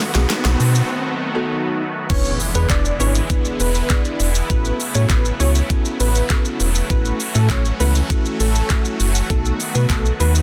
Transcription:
Already playing: supersaw synth D#3 F#3 A3 B3 F#4, riser
0.00 snare, open hi-hat, shaker
0.15 sub bass B1, tine electric piano B3 D#4 F#4 G#4, snare, shaker
0.30 snare, closed hi-hat, shaker
0.45 sub bass B1, snare, shaker
0.60 sub bass B2, open hi-hat, shaker
0.75 shaker
1.35 tine electric piano B3 D#4 F#4 A4
2.10 sub bass E1, supersaw synth D3 E3 G#3 B3 E4, tine electric piano B3 D4 E4 G#4 B4, analog synth lead C#5, kick, closed hi-hat, crash, impact, shaker
2.25 shaker
2.40 open hi-hat, shaker
2.55 sub bass E2, tine electric piano B3 D4 E4 G#4 B4, analog synth lead B4, shaker
2.70 sub bass E1, analog synth lead D5, kick, clap, closed hi-hat, shaker
2.85 shaker
3.00 sub bass G#1, tine electric piano B3 D4 E4 G#4 B4, analog synth lead C#5, open hi-hat, shaker
3.15 shaker
3.30 tine electric piano B3 D4 E4 G#4 B4, kick, closed hi-hat, shaker
3.45 shaker
3.60 sub bass E1, analog synth lead B4, open hi-hat, shaker
3.75 shaker
3.90 tine electric piano B3 D4 E4 G#4 D5, kick, clap, closed hi-hat, shaker
4.05 shaker
4.20 sub bass E1, open hi-hat, shaker
4.35 shaker
4.50 sub bass A1, supersaw synth C#3 F#3 A3, tine electric piano B3 C#4 E4 F#4 A4, analog synth lead B4, kick, closed hi-hat, shaker
4.65 shaker
4.80 open hi-hat, shaker
4.95 sub bass A2, tine electric piano B3 C#4 E4 F#4 A4, analog synth lead C#5, shaker
5.10 sub bass A1, analog synth lead B4, kick, clap, closed hi-hat, shaker
5.25 shaker
5.40 sub bass C#2, tine electric piano B3 C#4 E4 F#4 A4, analog synth lead C#5, open hi-hat, shaker
5.55 shaker
5.70 tine electric piano B3 C#4 E4 F#4 A4, kick, closed hi-hat, shaker
5.85 shaker
6.00 sub bass A1, analog synth lead B4, open hi-hat, shaker
6.15 shaker
6.30 tine electric piano B3 C#4 E4 F#4 A4, kick, clap, closed hi-hat, shaker
6.45 shaker
6.60 sub bass E1, open hi-hat, shaker
6.75 shaker
6.90 sub bass A1, supersaw synth E3 C#4 F#4, tine electric piano A3 C#4 E4 F#4 A4, analog synth lead B4, kick, closed hi-hat, shaker
7.05 shaker
7.20 open hi-hat, shaker
7.35 sub bass A2, tine electric piano A3 C#4 E4 F#4 A4, analog synth lead A4, shaker
7.50 sub bass A1, analog synth lead C#5, kick, clap, closed hi-hat, shaker
7.65 shaker
7.80 sub bass C#2, tine electric piano A3 C#4 E4 F#4 A4, analog synth lead B4, open hi-hat, shaker
7.95 shaker
8.10 tine electric piano A3 C#4 E4 F#4 A4, kick, closed hi-hat, shaker
8.25 shaker
8.40 sub bass A1, analog synth lead A4, open hi-hat, shaker
8.55 shaker
8.70 tine electric piano A3 C#4 E4 F#4 A4, kick, clap, closed hi-hat, shaker
8.85 shaker
9.00 sub bass F#1, open hi-hat, shaker
9.15 shaker
9.30 sub bass B1, supersaw synth D#3 B3, tine electric piano A3 B3 D#4 F#4 A4, analog synth lead A4, kick, closed hi-hat, shaker
9.45 shaker
9.60 open hi-hat, shaker
9.75 sub bass B2, tine electric piano A3 B3 D#4 F#4 B4, analog synth lead B4, shaker
9.90 sub bass B1, analog synth lead A4, kick, clap, closed hi-hat, shaker
10.05 shaker
10.20 sub bass D#2, tine electric piano A3 B3 D#4 F#4 B4, analog synth lead B4, open hi-hat, shaker
10.35 shaker

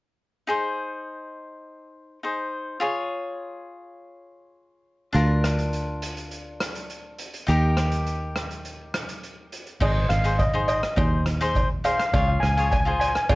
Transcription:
0.47 cavaquinho D#4 G#4 C5
2.23 cavaquinho D#4 G#4 C5
2.80 cavaquinho F4 G#4 C#5
5.13 fingered electric bass D2, cavaquinho D4 F4 A#4, closed hi-hat
5.44 cross-stick, closed hi-hat
5.58 closed hi-hat
5.73 closed hi-hat
6.02 closed hi-hat
6.17 closed hi-hat
6.31 closed hi-hat
6.60 cross-stick, closed hi-hat
6.75 closed hi-hat
6.90 closed hi-hat
7.18 closed hi-hat
7.34 closed hi-hat
7.47 fingered electric bass D#2, cavaquinho D#4 G4 A#4, closed hi-hat
7.77 cross-stick, closed hi-hat
7.92 closed hi-hat
8.07 closed hi-hat
8.36 cross-stick, closed hi-hat
8.51 closed hi-hat
8.65 closed hi-hat
8.94 cross-stick, closed hi-hat
9.09 closed hi-hat
9.23 closed hi-hat
9.52 closed hi-hat
9.67 closed hi-hat
9.80 fingered electric bass G#1, cavaquinho D#4 G#4 C5, steel pan D#5, kick, crash, cowbell
10.09 fingered electric bass G#1, steel pan F5, cross-stick, closed hi-hat
10.24 cavaquinho D#4 G#4 C5, closed hi-hat
10.39 steel pan D#5, kick, closed hi-hat, cowbell
10.54 cavaquinho D#4 G#4 C5
10.68 steel pan D#5, closed hi-hat, cowbell
10.83 cross-stick, closed hi-hat
10.96 fingered electric bass D#2, cavaquinho D#4 G#4 C5, kick, closed hi-hat, cowbell
11.26 cross-stick, closed hi-hat
11.41 cavaquinho D#4 G#4 C5, closed hi-hat
11.55 kick, closed hi-hat, cowbell
11.84 cavaquinho D#4 G#4 C5, steel pan F5, closed hi-hat, cowbell
11.91 steel pan F5
11.98 steel pan F5, cross-stick, closed hi-hat
12.06 steel pan F5
12.13 fingered electric bass C#2, cavaquinho F4 G#4 C#5, steel pan F5, kick, closed hi-hat, cowbell
12.20 steel pan F5
12.28 steel pan F5
12.40 fingered electric bass C#2, steel pan G#5, cross-stick, closed hi-hat
12.49 steel pan G#5
12.57 cavaquinho F4 G#4 C#5, steel pan G#5, closed hi-hat
12.65 steel pan G#5
12.71 steel pan G#5, kick, closed hi-hat, cowbell
12.80 steel pan G#5
12.85 cavaquinho F4 G#4 C5, steel pan G#5
12.99 steel pan G#5, closed hi-hat, cowbell
13.08 steel pan G#5
13.15 steel pan G#5, cross-stick, closed hi-hat
13.23 steel pan G#5
13.29 fingered electric bass G#1, cavaquinho F4 G#4 C#5, steel pan G#5, kick, closed hi-hat, cowbell

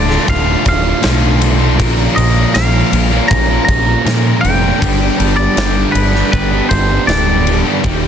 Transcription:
Already playing: picked electric bass D1, distorted electric guitar A2, clean electric guitar D5
0.07 distorted electric guitar D3 A3 F4, snare
0.28 picked electric bass D1, clean electric guitar F5, kick, ride
0.44 distorted electric guitar D3 A3 F4
0.64 picked electric bass D1, distorted electric guitar A2 D3 A3 F4, muted distorted electric guitar stroke, kick, ride
0.69 clean electric guitar F5
0.83 distorted electric guitar D3 A3 F4
1.01 picked electric bass B1, distorted electric guitar D2 A2 D3 A3 F4, snare, ride
1.20 distorted electric guitar D3 A3 F4
1.40 distorted electric guitar A2 D3 A3 F4, ride
1.58 distorted electric guitar D3 A3 F4
1.76 picked electric bass A#1, distorted electric guitar A#2 F3 A#3 C#4 F4 A#4, kick, ride
2.15 picked electric bass A#1, distorted electric guitar A#3 C#4 F4 A#4, clean electric guitar D#5, ride
2.54 picked electric bass A#1, distorted electric guitar A#2 F3 A#3 C#4 F4 A#4, clean electric guitar F5, snare, ride
2.72 distorted electric guitar A#3 C#4 F4 A#4
2.91 picked electric bass A#1, distorted electric guitar A#3 C#4 F4 A#4, muted distorted electric guitar stroke, ride
3.10 distorted electric guitar A#3 C#4 F4 A#4
3.28 picked electric bass A#1, clean electric guitar A#5, kick, ride
3.49 distorted electric guitar A#3 C#4 F4 A#4
3.65 picked electric bass A#1, distorted electric guitar A#3 C#4, clean electric guitar A#5, muted distorted electric guitar stroke, kick, ride
3.69 distorted electric guitar F4 A#4
3.86 distorted electric guitar A#3 C#4 F4 A#4
4.05 distorted electric guitar A#2 F3 A#3 C#4 F4 A#4, picked electric bass A#2, snare, ride
4.23 distorted electric guitar A#3 C#4 F4 A#4
4.41 picked electric bass F1, distorted electric guitar A#3 C#4 F4 A#4, clean electric guitar G5, ride
4.60 distorted electric guitar A#3 C#4 F4 A#4
4.79 picked electric bass G1, distorted electric guitar G2 D3 G3 B3 D4 G4, kick, ride
5.18 picked electric bass G1, distorted electric guitar G3 B3 D4 G4, ride
5.37 clean electric guitar D5
5.57 picked electric bass G1, distorted electric guitar G2 D3 G3 B3 D4 G4, snare, ride
5.74 distorted electric guitar G3 B3 D4 G4
5.92 picked electric bass G1, distorted electric guitar G3 B3 D4, clean electric guitar B4, muted distorted electric guitar stroke, ride
5.96 distorted electric guitar G4
6.13 distorted electric guitar G3 B3 D4 G4, snare
6.32 picked electric bass G1, clean electric guitar B4, kick, ride
6.51 distorted electric guitar G3 B3 D4 G4
6.69 picked electric bass G1, distorted electric guitar G3 B3, clean electric guitar C5, muted distorted electric guitar stroke, kick, ride
6.73 distorted electric guitar D4 G4
6.90 distorted electric guitar G3 B3 D4 G4
7.07 picked electric bass D1, distorted electric guitar G2 D3 G3 B3 D4 G4, clean electric guitar D5, snare, ride
7.27 distorted electric guitar G3 B3 D4 G4
7.45 distorted electric guitar G3 B3 D4 G4, ride
7.63 distorted electric guitar G3 B3 D4 G4
7.81 picked electric bass D#1, distorted electric guitar D#2 A#2 D#3 G3 G4, kick, ride

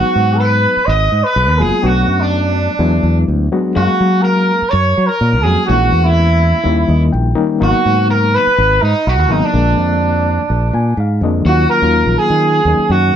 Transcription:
Already playing: reed electric piano F#3 G#3 B3 D#4, overdriven electric guitar F#4, trumpet F#4
0.16 fingered electric bass G#2
0.39 trumpet B4, overdriven electric guitar B4
0.77 muted fingered electric bass stroke
0.86 fingered electric bass G#1, trumpet D#5, overdriven electric guitar D#5
1.12 fingered electric bass G#2
1.23 trumpet B4, overdriven electric guitar B4
1.36 fingered electric bass B1
1.49 fingered electric bass D#2
1.59 fingered electric bass F#1, reed electric piano F#3 G#3 A#3 B3 F4, trumpet G#4, overdriven electric guitar G#4
1.82 fingered electric bass B1, reed electric piano F#3 A3 B3 D4 C#5, trumpet F#4, overdriven electric guitar F#4
2.08 fingered electric bass F#2
2.21 trumpet D4, overdriven electric guitar D4
2.79 fingered electric bass E2, reed electric piano F#3 G#3 B3 D4 E4
3.03 fingered electric bass E2
3.28 fingered electric bass D2
3.52 reed electric piano F#3 G#3 B3 D4 F#4
3.75 fingered electric bass F#2, reed electric piano F#3 G#3 A#3 C#4 F5, trumpet F#4, overdriven electric guitar F#4
4.00 fingered electric bass F#3
4.22 trumpet A#4, overdriven electric guitar A#4
4.62 muted fingered electric bass stroke
4.70 fingered electric bass F#2, trumpet C#5, overdriven electric guitar C#5
4.98 fingered electric bass F#3
5.07 trumpet A#4, overdriven electric guitar A#4
5.21 fingered electric bass A#2
5.33 fingered electric bass C#2
5.43 fingered electric bass F2, reed electric piano F#3 G#3 A#3 C#4 F#4, trumpet G#4, overdriven electric guitar G#4
5.66 fingered electric bass A#1, reed electric piano E3 G#3 A#3 C#4 E4, trumpet F#4, overdriven electric guitar F#4
5.92 fingered electric bass E2
6.04 trumpet E4, overdriven electric guitar E4
6.64 fingered electric bass D#2, reed electric piano D#3 G3 A#3 C#4 E4
6.89 fingered electric bass D#2, reed electric piano D#5
7.12 fingered electric bass A#1, reed electric piano G5
7.35 reed electric piano D#3 G3 A#3 C#4 D#4
7.60 fingered electric bass G#1, reed electric piano C#3 F#3 A#3 B3 D#4, trumpet F#4, overdriven electric guitar F#4
7.86 fingered electric bass G#2
8.10 trumpet A#4, overdriven electric guitar A#4
8.35 trumpet B4, overdriven electric guitar B4
8.47 muted fingered electric bass stroke
8.58 fingered electric bass G#1
8.82 fingered electric bass G#2, trumpet D#4, overdriven electric guitar D#4
9.07 fingered electric bass B1, trumpet F#4, overdriven electric guitar F#4
9.19 fingered electric bass D#2
9.29 fingered electric bass G#1, reed electric piano C#3 F#3 A#3 B3 D#4, overdriven electric guitar D#4, trumpet D#4
9.45 trumpet D4, overdriven electric guitar D4
9.53 fingered electric bass A#1, reed electric piano D3 F3 G#3 A#3 D4
9.78 fingered electric bass F2
10.50 fingered electric bass A#1
10.73 fingered electric bass A#2, reed electric piano G#5
10.97 fingered electric bass G#2, reed electric piano F5
11.21 fingered electric bass F2, reed electric piano D3 F3 G#3 A#3 D4 D#5
11.45 fingered electric bass D#2, reed electric piano D#3 F#3 A#3 C#4 F4, overdriven electric guitar F#4, trumpet F#4
11.70 trumpet A#4, overdriven electric guitar A#4
11.82 fingered electric bass D#2, reed electric piano D#3 F#3 A#3 C#4 F4
12.06 fingered electric bass A#1
12.18 trumpet G#4, overdriven electric guitar G#4
12.30 fingered electric bass D#3
12.65 fingered electric bass D#2, reed electric piano D#3 F#3 A#3 C#4 D#4
12.79 muted fingered electric bass stroke
12.89 fingered electric bass F#2, overdriven electric guitar F#4, trumpet F#4

